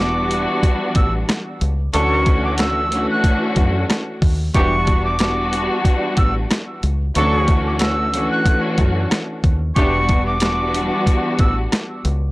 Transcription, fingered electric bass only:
0.00 0.45 E1 loud
0.96 1.23 A1 loud
1.61 1.88 C#2 loud
1.94 3.06 D2 loud
3.57 3.83 F#2 medium
4.22 4.49 D#2 medium
4.55 5.67 E1 loud
6.18 6.44 A1 loud
6.83 7.10 C#2 loud
7.16 8.28 D2 loud
8.79 9.05 F#2 medium
9.44 9.70 D#2 loud
9.77 10.89 E1 loud
11.40 11.66 A1 loud
12.05 12.31 C#2 loud

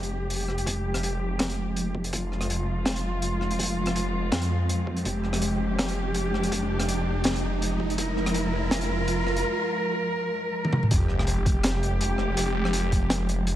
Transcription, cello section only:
0.00 10.87 F3 medium
0.00 10.87 G#3 medium
0.00 2.12 G4 medium
2.13 5.05 F4 medium
5.05 7.97 G4 medium
7.98 10.90 A#4 medium
10.91 13.56 F3 medium
10.91 13.56 G#3 medium
10.91 13.56 G4 medium

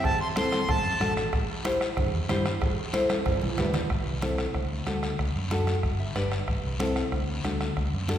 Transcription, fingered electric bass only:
0.04 0.17 A1 medium
0.69 0.82 A1 medium
0.84 0.91 F#2 medium
1.01 1.26 A1 medium
1.33 1.46 A1 medium
1.97 2.10 G2 medium
2.13 2.20 E2 loud
2.29 2.55 G2 medium
2.62 2.74 A1 medium
3.26 3.39 G1 medium
3.42 3.48 B1 medium
3.58 3.84 D2 medium
3.90 4.03 A1 medium
4.06 4.45 C2 medium
4.55 4.80 D2 medium
4.87 5.12 D2 medium
5.19 5.32 D2 medium
5.35 5.74 F#2 medium
5.84 6.09 G1 medium
6.16 6.41 G1 medium
6.48 6.61 A1 medium
6.64 7.03 C2 medium
7.12 7.38 D2 medium
7.44 7.70 D2 medium
7.77 7.90 D2 medium
7.93 8.18 F#2 medium

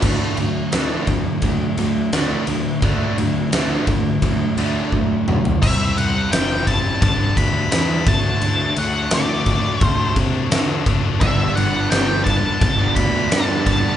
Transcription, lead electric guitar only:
5.62 5.98 E5 loud
5.97 6.32 F#5 loud
6.32 6.67 G5 loud
6.67 7.01 A5 loud
7.02 7.38 A5 loud
7.37 7.71 B5 loud
7.72 8.08 B5 loud
8.08 8.78 A5 loud
8.78 9.14 F#5 loud
9.14 9.84 D5 medium
9.84 10.14 C5 medium
11.21 11.57 E5 medium
11.55 11.90 F#5 medium
11.90 12.23 G5 medium
12.24 12.97 A5 loud
12.95 13.29 B5 loud
13.32 13.65 A5 loud
13.66 13.97 A5 loud

